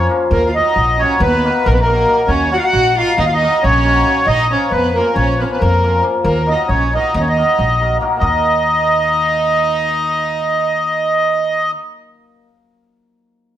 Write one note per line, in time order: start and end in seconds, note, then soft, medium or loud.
0.09 0.36 F3 loud
0.09 0.23 A#3 medium
0.09 0.22 C#4 medium
0.09 0.23 F4 medium
0.09 0.23 A#4 loud
0.31 0.58 D#2 loud
0.31 0.47 A#3 medium
0.31 0.48 A#4 medium
0.46 0.55 F4 medium
0.46 0.55 F5 medium
0.54 0.99 F#3 medium
0.54 0.68 A#3 medium
0.54 0.68 D#4 medium
0.54 0.97 D#4 medium
0.54 0.68 F#4 medium
0.54 0.68 A#4 medium
0.54 1.01 D#5 loud
0.76 1.03 A#1 medium
0.99 1.43 F#3 medium
0.99 1.14 A#3 medium
0.99 1.20 C#4 medium
0.99 1.14 D#4 medium
0.99 1.14 F#4 medium
0.99 1.14 A#4 medium
0.99 1.21 C#5 loud
1.20 1.47 D#2 loud
1.20 1.63 B3 medium
1.20 1.68 B4 loud
1.44 1.86 F#3 medium
1.44 1.58 A#3 medium
1.44 1.58 D#4 medium
1.44 1.58 F#4 medium
1.44 1.58 A#4 medium
1.66 2.04 A#1 loud
1.66 1.72 A#3 medium
1.66 1.73 A#4 loud
1.73 1.79 B3 medium
1.73 1.80 B4 medium
1.80 2.26 A#3 medium
1.80 2.31 A#4 loud
1.87 2.06 F#3 medium
1.87 2.00 A#3 medium
1.87 2.01 D#4 medium
1.87 2.00 F#4 medium
1.87 2.01 A#4 medium
2.07 2.49 F#3 medium
2.07 2.20 A#3 medium
2.07 2.21 D#4 medium
2.07 2.21 F#4 medium
2.07 2.21 A#4 medium
2.28 2.55 D#2 medium
2.28 2.52 C#4 medium
2.28 2.53 C#5 loud
2.50 2.95 F#3 medium
2.50 2.64 A#3 medium
2.50 2.65 D#4 medium
2.50 2.65 F#4 medium
2.50 2.58 F#4 medium
2.50 2.65 A#4 medium
2.50 2.60 F#5 loud
2.58 2.65 F4 medium
2.58 2.66 F5 medium
2.64 2.96 F#4 loud
2.64 2.98 F#5 loud
2.73 3.00 A#1 loud
2.96 3.40 F#3 medium
2.96 3.10 A#3 medium
2.96 3.10 D#4 medium
2.96 3.17 F4 loud
2.96 3.11 F#4 medium
2.96 3.11 A#4 medium
2.96 3.19 F5 medium
3.18 3.45 D#2 loud
3.18 3.25 D#4 medium
3.18 3.27 D#5 loud
3.26 3.34 F4 medium
3.26 3.34 F5 loud
3.33 3.62 D#4 medium
3.33 3.64 D#5 loud
3.41 3.84 F#3 medium
3.41 3.55 A#3 medium
3.41 3.55 D#4 medium
3.41 3.56 F#4 medium
3.41 3.56 A#4 medium
3.63 4.02 A#1 loud
3.63 4.23 C#4 loud
3.63 4.28 C#5 loud
3.85 4.04 F#3 medium
3.85 3.98 A#3 medium
3.85 3.99 D#4 medium
3.85 3.99 F#4 medium
3.85 3.99 A#4 medium
4.05 4.32 F#3 medium
4.05 4.18 A#3 medium
4.05 4.18 D#4 medium
4.05 4.19 F#4 medium
4.05 4.19 A#4 medium
4.27 4.53 A#1 medium
4.27 4.50 D#4 loud
4.27 4.52 D#5 loud
4.50 4.95 F3 medium
4.50 4.64 A#3 medium
4.50 4.64 C#4 medium
4.50 4.71 C#4 medium
4.50 4.64 F4 medium
4.50 4.65 A#4 medium
4.50 4.72 C#5 loud
4.71 4.98 F2 medium
4.71 4.95 B3 loud
4.71 4.96 B4 medium
4.94 5.39 F3 medium
4.94 5.15 A#3 medium
4.94 5.09 A#3 medium
4.94 5.09 C#4 medium
4.94 5.09 F4 medium
4.94 5.16 A#4 medium
4.94 5.09 A#4 medium
5.15 5.43 A#1 loud
5.15 5.39 C#4 medium
5.15 5.40 C#5 loud
5.38 5.82 F3 medium
5.38 5.53 A#3 medium
5.38 5.44 B3 medium
5.38 5.53 C#4 medium
5.38 5.53 F4 medium
5.38 5.44 B4 medium
5.42 5.50 C#4 medium
5.42 5.54 A#4 medium
5.42 5.50 C#5 medium
5.50 5.61 B3 medium
5.50 5.61 B4 medium
5.60 5.99 F2 loud
5.60 6.06 A#3 medium
5.60 6.05 A#4 loud
5.83 6.01 F3 medium
5.83 5.96 A#3 medium
5.83 5.96 C#4 medium
5.83 5.96 F4 medium
5.83 5.97 A#4 medium
6.02 6.29 F3 medium
6.02 6.16 A#3 medium
6.02 6.16 C#4 medium
6.02 6.16 F4 medium
6.02 6.16 A#4 medium
6.24 6.51 D#2 loud
6.24 6.48 A#3 medium
6.24 6.49 A#4 medium
6.46 6.92 F#3 medium
6.46 6.60 A#3 medium
6.46 6.60 D#4 medium
6.46 6.61 F#4 medium
6.46 6.61 A#4 medium
6.46 6.69 D#5 loud
6.51 6.69 D#4 medium
6.69 6.96 A#1 medium
6.69 6.93 C#4 medium
6.69 6.94 C#5 loud
6.93 7.35 F#3 medium
6.93 7.06 A#3 medium
6.93 7.06 D#4 medium
6.93 7.14 D#4 medium
6.93 7.07 F#4 medium
6.93 7.07 A#4 medium
6.93 7.15 D#5 medium
7.14 7.41 D#2 loud
7.14 7.21 D#4 medium
7.14 7.22 D#5 loud
7.21 7.28 C#4 medium
7.21 7.29 C#5 medium
7.29 7.99 D#4 medium
7.29 7.98 D#5 medium
7.36 7.79 F#3 medium
7.36 7.50 A#3 medium
7.36 7.50 D#4 medium
7.36 7.51 F#4 medium
7.36 7.51 A#4 medium
7.59 7.97 A#1 medium
7.80 8.00 F#3 medium
7.80 7.94 A#3 medium
7.80 7.94 D#4 medium
7.80 7.94 F#4 medium
7.80 7.94 A#4 medium
8.01 8.27 F#3 medium
8.01 8.14 A#3 medium
8.01 8.14 D#4 medium
8.01 8.15 F#4 medium
8.01 8.14 A#4 loud
8.16 12.45 A#3 medium
8.16 11.80 D#4 medium
8.16 11.71 D#5 medium
8.21 11.74 D#2 loud
8.21 11.75 D#4 medium
8.21 11.73 F#4 medium
8.21 11.76 A#4 medium